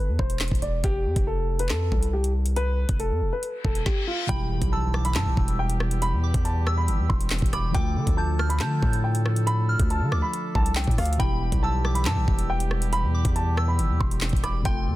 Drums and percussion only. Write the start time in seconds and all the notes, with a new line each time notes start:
0.19 kick
0.30 closed hi-hat
0.40 snare, clap, closed hi-hat
0.48 kick, closed hi-hat
0.55 closed hi-hat
0.62 closed hi-hat
0.84 kick, closed hi-hat
1.16 kick, closed hi-hat
1.59 closed hi-hat
1.69 snare, clap
1.92 kick
2.03 closed hi-hat
2.24 closed hi-hat
2.46 closed hi-hat
2.56 closed hi-hat
2.89 kick, closed hi-hat
3.00 closed hi-hat
3.43 closed hi-hat
3.65 kick
3.75 closed hi-hat
3.86 kick, snare
4.29 kick, closed hi-hat
4.62 kick, closed hi-hat
4.94 cross-stick
5.05 closed hi-hat
5.15 snare, clap
5.37 kick
5.48 closed hi-hat
5.70 closed hi-hat
5.80 cross-stick
5.91 closed hi-hat
6.02 closed hi-hat
6.34 kick, closed hi-hat
6.45 closed hi-hat
6.67 cross-stick
6.88 closed hi-hat
7.10 kick
7.21 closed hi-hat
7.31 snare, clap, closed hi-hat
7.39 kick, closed hi-hat
7.46 closed hi-hat
7.53 cross-stick, closed hi-hat
7.75 kick, closed hi-hat
8.07 kick, closed hi-hat
8.39 cross-stick
8.50 closed hi-hat
8.60 snare, clap
8.82 kick
8.93 closed hi-hat
9.15 closed hi-hat
9.26 cross-stick
9.36 closed hi-hat
9.47 closed hi-hat
9.80 kick, closed hi-hat
9.90 closed hi-hat
10.12 cross-stick
10.34 closed hi-hat
10.55 kick
10.66 closed hi-hat
10.76 snare, clap, closed hi-hat
10.84 kick, closed hi-hat
10.91 closed hi-hat
10.98 cross-stick, closed hi-hat, open hi-hat
11.06 closed hi-hat
11.13 closed hi-hat
11.20 kick, closed hi-hat
11.52 kick, closed hi-hat
11.85 cross-stick
11.95 closed hi-hat
12.05 snare, clap
12.28 kick
12.39 closed hi-hat
12.60 closed hi-hat
12.71 cross-stick
12.82 closed hi-hat
12.93 closed hi-hat
13.25 kick, closed hi-hat
13.36 closed hi-hat
13.57 cross-stick
13.79 closed hi-hat
14.01 kick
14.11 closed hi-hat
14.21 snare, clap, closed hi-hat
14.29 kick, closed hi-hat
14.37 closed hi-hat
14.44 cross-stick, closed hi-hat
14.65 kick, closed hi-hat